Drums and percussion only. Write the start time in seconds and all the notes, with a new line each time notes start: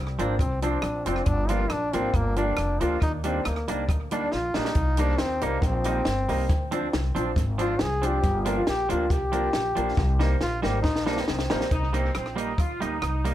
0.07 cross-stick
0.19 closed hi-hat
0.39 kick, closed hi-hat
0.62 closed hi-hat
0.82 cross-stick, closed hi-hat
1.06 closed hi-hat
1.16 cross-stick
1.26 kick, closed hi-hat
1.49 closed hi-hat
1.70 cross-stick, closed hi-hat
1.93 closed hi-hat
2.14 kick, closed hi-hat
2.36 closed hi-hat
2.57 cross-stick, closed hi-hat
2.81 closed hi-hat
3.02 kick, closed hi-hat
3.24 closed hi-hat
3.45 cross-stick, closed hi-hat
3.56 cross-stick
3.68 closed hi-hat
3.89 kick, closed hi-hat
4.11 closed hi-hat
4.32 snare
4.54 snare
4.65 snare
4.75 kick, closed hi-hat
4.97 closed hi-hat
5.18 snare, closed hi-hat
5.41 closed hi-hat
5.62 kick, closed hi-hat
5.84 closed hi-hat
6.05 snare, closed hi-hat
6.29 open hi-hat
6.50 kick, closed hi-hat
6.72 closed hi-hat
6.93 snare, closed hi-hat
7.16 closed hi-hat
7.36 kick, closed hi-hat
7.59 closed hi-hat
7.79 snare, closed hi-hat
8.03 closed hi-hat
8.23 kick, closed hi-hat
8.46 closed hi-hat
8.67 snare, closed hi-hat
8.90 closed hi-hat
9.10 kick, closed hi-hat
9.33 closed hi-hat
9.53 snare, closed hi-hat
9.76 closed hi-hat
9.97 kick, snare
10.20 snare
10.41 snare
10.63 snare
10.84 kick, snare
10.96 snare
11.07 snare
11.17 snare
11.28 snare
11.39 snare
11.50 snare
11.61 snare
11.71 kick, closed hi-hat
11.94 closed hi-hat
12.15 cross-stick, closed hi-hat
12.26 cross-stick
12.38 closed hi-hat
12.58 kick, closed hi-hat
12.82 closed hi-hat
13.02 cross-stick, closed hi-hat
13.25 closed hi-hat